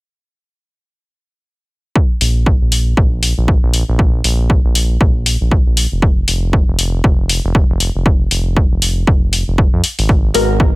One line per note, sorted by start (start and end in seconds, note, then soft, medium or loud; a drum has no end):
1.96 kick loud
2.21 2.57 A#1 loud
2.21 open hi-hat loud
2.46 kick loud
2.61 2.94 A#1 medium
2.72 open hi-hat loud
2.97 3.33 A#1 medium
2.97 kick loud
3.23 open hi-hat loud
3.38 3.58 A#1 loud
3.48 kick loud
3.63 3.83 A#1 loud
3.74 open hi-hat medium
3.89 4.21 A#1 medium
3.99 kick loud
4.24 4.61 A#1 medium
4.24 open hi-hat loud
4.50 kick loud
4.65 4.98 A#1 loud
4.75 open hi-hat loud
5.01 5.37 A#1 medium
5.01 kick loud
5.26 open hi-hat loud
5.41 5.61 A#1 medium
5.51 kick loud
5.67 5.87 A#1 loud
5.77 open hi-hat loud
5.92 6.25 F1 medium
6.02 kick loud
6.28 6.64 F1 loud
6.28 open hi-hat loud
6.53 kick loud
6.68 7.01 F1 loud
6.79 open hi-hat loud
7.04 7.40 F1 medium
7.04 kick loud
7.29 open hi-hat loud
7.44 7.64 F1 medium
7.55 kick loud
7.70 7.90 F1 loud
7.80 open hi-hat loud
7.95 8.28 F1 medium
8.06 kick loud
8.31 8.67 F1 loud
8.31 open hi-hat loud
8.57 kick loud
8.72 9.04 F1 loud
8.82 open hi-hat loud
9.07 9.44 F1 medium
9.07 kick loud
9.33 open hi-hat loud
9.48 9.68 F1 medium
9.58 kick loud
9.73 9.82 F2 medium
9.84 open hi-hat loud
9.99 10.32 G#1 medium
9.99 open hi-hat medium
10.09 kick loud
10.34 10.71 G#1 medium
10.34 10.71 G#3 medium
10.34 10.71 B3 medium
10.34 10.71 F#4 medium
10.34 10.72 A#4 loud
10.34 open hi-hat loud
10.60 kick loud